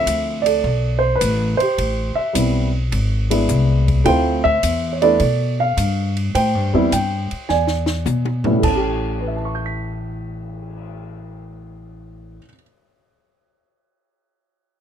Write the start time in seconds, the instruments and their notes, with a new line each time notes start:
Already playing: grand piano F3 A3 C4 E4 C5 E5
0.06 upright bass D2, kick, hi-hat pedal, ride
0.42 grand piano A4 D5, ride
0.64 upright bass B1, kick
0.99 grand piano C5
1.15 grand piano B4
1.21 upright bass A1, kick, hi-hat pedal, ride
1.57 grand piano C5, ride
1.62 grand piano G4
1.78 upright bass A1, kick, ride
2.15 grand piano E5, muted upright bass stroke
2.33 upright bass B1, grand piano G3 B3 C4 E4, kick, hi-hat pedal, ride
2.92 upright bass G#1, kick, ride
3.30 grand piano G#3 B3 D4 E4, ride
3.49 upright bass C2, kick, hi-hat pedal
3.88 kick, ride
4.04 upright bass D2, grand piano A3 C4 E4 F4 C5 G5, kick, ride
4.44 grand piano E5, kick
4.63 upright bass E2, kick, hi-hat pedal, ride
4.93 grand piano C#5
5.02 grand piano A3 B3 D4 E4 A4 D5, ride
5.20 upright bass B2, kick, ride
5.60 grand piano F5
5.77 upright bass G2, kick, hi-hat pedal, ride
6.17 ride
6.35 upright bass A2, grand piano C5 G5, kick, ride
6.55 upright bass G2
6.74 upright bass E2, grand piano G3 B3 C4 E4
6.92 upright bass G2, grand piano G5, kick, hi-hat pedal, ride
7.31 muted upright bass stroke, ride
7.49 upright bass E2, grand piano D5 G#5, snare
7.67 snare
7.86 snare
8.06 upright bass B2, hi-hat pedal, high tom
8.25 high tom
8.44 grand piano A2 G3 B3 C#4 E4, floor tom
8.51 grand piano A2
8.59 upright bass A1, grand piano A3, kick, crash
8.64 grand piano C#4 A5
8.76 grand piano G4
9.03 cymbal swell
9.20 grand piano B4
9.28 grand piano E5
9.36 grand piano A5
9.45 grand piano C#6
9.55 grand piano G6
9.66 grand piano B6